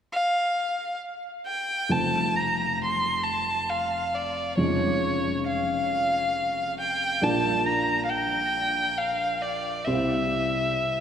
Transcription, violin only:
0.13 0.97 F5 medium
1.47 1.93 G5 medium
1.91 2.38 A5 medium
2.36 2.80 A#5 medium
2.84 3.25 C6 medium
3.24 3.71 A5 medium
3.70 4.16 F5 medium
4.15 4.58 D5 medium
4.58 5.43 C#5 medium
5.47 6.75 F5 medium
6.80 7.25 G5 medium
7.24 7.69 A5 medium
7.68 8.04 A#5 medium
8.05 8.11 F5 soft
8.09 8.99 G5 medium
8.98 9.43 F5 medium
9.42 9.86 D5 medium
9.85 11.00 E5 medium

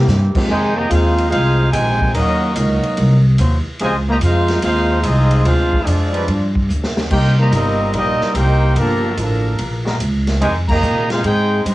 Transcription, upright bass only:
0.07 0.33 G2 loud
0.35 muted upright bass stroke soft
0.50 0.90 F2 medium
0.90 1.31 D#2 loud
1.32 1.72 C2 loud
1.73 2.13 A#1 loud
2.14 2.55 D#2 medium
2.56 2.81 C#2 loud
2.84 muted upright bass stroke soft
2.98 3.38 C2 loud
3.39 3.64 D#2 loud
3.66 muted upright bass stroke soft
3.80 4.20 C#2 medium
4.21 4.61 F2 loud
4.62 5.03 D#2 loud
5.04 5.44 C2 loud
5.45 5.86 D2 loud
5.86 6.27 F2 loud
6.28 6.68 G2 medium
6.69 7.09 D2 medium
7.11 7.51 C2 medium
7.51 7.92 G1 loud
7.93 8.19 A#1 medium
8.21 muted upright bass stroke soft
8.34 8.75 C2 loud
8.76 9.16 G1 medium
9.17 9.58 A1 medium
9.59 9.99 A#1 loud
10.00 10.40 C#2 loud
10.42 10.82 F2 loud
10.83 11.23 A#2 loud
11.24 11.64 G#2 loud
11.65 11.75 G2 medium

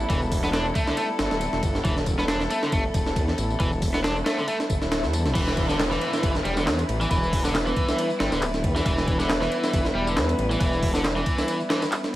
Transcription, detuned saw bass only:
0.10 0.72 E1 loud
1.19 1.28 G1 medium
1.31 1.48 D1 loud
1.53 1.61 E1 loud
1.63 1.80 G1 medium
1.85 2.47 E1 loud
2.72 2.90 G1 medium
2.94 3.18 E1 loud
3.16 3.34 E2 medium
3.38 3.56 A1 medium
3.60 4.22 E1 loud
4.70 4.79 G1 medium
4.82 5.05 D1 loud
5.03 5.27 E2 medium
5.25 5.33 B1 medium
5.35 5.97 E1 loud
6.23 6.40 G1 medium
6.45 6.68 E1 loud
6.67 6.84 E2 medium
6.89 7.06 A1 medium
7.11 7.73 E1 loud
8.20 8.29 G1 medium
8.32 8.65 D1 loud
8.64 8.81 E2 loud
8.86 9.48 E1 loud
9.73 9.91 G1 medium
9.95 10.18 E1 loud
10.17 10.34 E2 medium
10.38 10.56 A1 medium
10.61 11.23 E1 loud

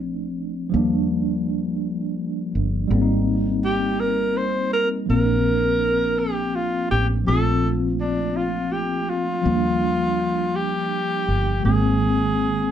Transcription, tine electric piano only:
0.00 0.66 F3 medium
0.00 0.67 A3 medium
0.00 0.68 C4 medium
0.00 0.70 D4 medium
0.70 2.85 F3 medium
0.70 2.86 G3 medium
0.74 2.87 A#3 medium
0.74 2.88 D4 medium
2.88 5.03 G3 medium
2.88 5.04 A#3 medium
2.93 5.05 C4 medium
2.93 2.99 D4 medium
3.02 5.10 D#4 medium
5.06 7.21 F3 medium
5.06 7.22 A#3 medium
5.11 7.23 C4 medium
5.11 7.25 D4 medium
7.24 9.39 F3 medium
7.24 9.41 A3 medium
7.30 9.42 C4 medium
7.30 9.43 F4 medium
9.42 11.57 F3 medium
9.42 11.58 G3 medium
9.47 11.59 A#3 medium
9.47 11.61 D4 medium
11.60 12.71 D#3 medium
11.60 12.71 G#3 medium
11.65 12.71 A#3 medium
11.65 12.71 C4 medium

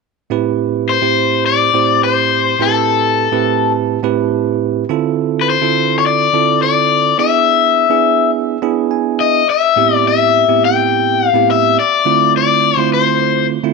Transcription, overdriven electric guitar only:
0.89 1.46 C5 medium
1.46 2.04 D5 medium
2.04 2.62 C5 medium
2.62 3.72 A4 medium
5.41 5.47 B4 medium
5.50 5.98 C5 medium
5.99 6.05 C#5 medium
6.06 6.62 D5 medium
6.63 7.19 D5 medium
7.19 8.30 E5 medium
9.20 9.49 D#5 medium
9.50 9.95 E5 medium
9.95 10.07 D5 medium
10.08 10.65 E5 medium
10.65 11.28 G5 medium
11.28 11.50 F5 medium
11.51 11.79 E5 medium
11.79 12.32 D5 medium
12.37 12.77 D5 medium
12.77 12.89 C5 medium
12.94 13.46 C5 medium

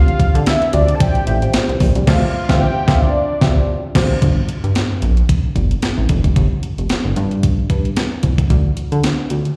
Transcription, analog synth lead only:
0.00 0.43 F5 loud
0.47 0.75 E5 loud
0.74 0.96 D5 medium
0.95 1.02 A5 medium
1.01 1.54 G5 loud
2.07 2.32 F5 loud
2.34 2.62 F5 medium
2.61 2.89 G5 loud
2.87 3.04 F5 loud
3.02 3.83 D5 loud

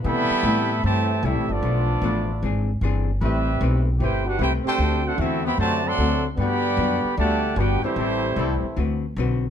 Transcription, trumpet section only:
0.05 0.80 A4 loud
0.05 0.80 E5 loud
0.05 0.80 G5 loud
0.05 0.80 B5 loud
0.84 1.21 G4 medium
0.84 1.21 C5 medium
0.84 1.21 E5 medium
0.84 1.21 A5 loud
1.24 1.50 C4 medium
1.24 1.50 G4 medium
1.24 1.50 A4 medium
1.24 1.50 E5 medium
1.51 2.43 B3 medium
1.51 2.43 F4 medium
1.51 2.43 A4 medium
1.51 2.69 D5 loud
3.24 3.84 C4 medium
3.24 3.84 G4 medium
3.24 3.84 B4 medium
3.24 3.85 E5 loud
4.02 4.26 E4 medium
4.02 4.25 B4 medium
4.02 4.26 C5 medium
4.02 4.26 G5 loud
4.27 4.41 D4 medium
4.27 4.41 G4 medium
4.27 4.39 B4 medium
4.27 4.40 F#5 medium
4.40 4.52 E4 medium
4.40 4.52 B4 medium
4.40 4.52 C5 medium
4.40 4.53 G5 loud
4.67 5.03 D4 medium
4.67 5.04 A4 medium
4.67 5.04 C5 medium
4.67 5.03 G5 loud
5.06 5.20 D4 medium
5.06 5.19 A4 medium
5.06 5.20 C5 medium
5.06 5.20 F#5 medium
5.20 5.46 C4 medium
5.20 5.46 F#4 medium
5.20 5.46 A4 medium
5.20 5.45 E5 loud
5.45 5.59 G4 medium
5.45 5.58 C5 medium
5.45 5.58 E5 medium
5.45 5.58 B5 loud
5.60 5.84 F#4 loud
5.60 5.84 C5 medium
5.60 5.84 D5 medium
5.60 5.84 A5 loud
5.87 6.26 A4 loud
5.87 6.26 D5 loud
5.87 6.26 F#5 loud
5.87 6.26 C6 loud
6.38 7.14 G4 loud
6.38 7.14 D5 loud
6.38 7.14 F#5 loud
6.38 7.14 B5 loud
7.17 7.55 G4 medium
7.17 7.55 D5 medium
7.17 7.55 F#5 medium
7.17 7.55 A5 loud
7.57 7.84 D4 medium
7.57 7.84 F#4 medium
7.57 7.84 B4 medium
7.57 7.84 G5 loud
7.83 8.99 A3 medium
7.83 8.99 E4 medium
7.83 8.73 G4 medium
7.83 8.99 C5 loud

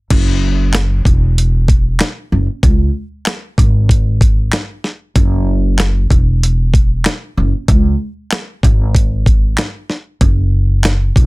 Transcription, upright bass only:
0.11 1.01 F#1 loud
1.06 1.96 E1 medium
2.32 2.45 F#1 medium
2.63 2.88 C#2 loud
3.58 4.49 G#1 loud
5.16 6.07 F#1 loud
6.11 7.01 E1 medium
7.37 7.51 F#1 medium
7.69 7.93 C#2 loud
8.64 9.54 G#1 loud
10.21 11.12 F#1 loud
11.16 11.26 E1 medium

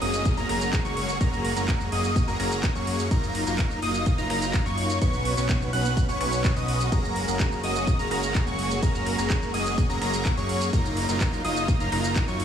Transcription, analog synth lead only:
0.02 0.34 D#6 loud
0.37 0.47 A#5 loud
0.49 0.82 A#5 loud
0.85 1.18 C#6 medium
1.21 1.54 A#5 loud
1.56 1.89 A#5 medium
1.92 2.25 D#6 loud
2.28 2.37 A#5 loud
2.40 2.73 A#5 loud
2.75 3.08 C#6 medium
3.11 3.44 A#5 loud
3.47 3.80 A#5 medium
3.82 4.15 D#6 loud
4.18 4.28 A#5 loud
4.30 4.63 A#5 loud
4.66 4.99 C#6 medium
5.02 5.34 C#6 loud
5.37 5.70 C#6 medium
5.73 6.06 F#6 loud
6.09 6.18 C#6 loud
6.21 6.53 C#6 loud
6.56 6.89 D#6 medium
6.92 7.25 A#5 loud
7.28 7.61 A#5 medium
7.64 7.96 D#6 loud
7.99 8.09 A#5 loud
8.11 8.44 A#5 loud
8.47 8.80 C#6 medium
8.83 9.15 A#5 loud
9.18 9.51 A#5 medium
9.54 9.87 D#6 loud
9.90 9.99 A#5 loud
10.02 10.34 A#5 loud
10.37 10.70 C#6 medium
10.73 11.06 A#5 loud
11.09 11.42 A#5 medium
11.45 11.77 D#6 loud
11.80 11.90 A#5 loud
11.92 12.25 A#5 loud
12.28 12.45 C#6 medium

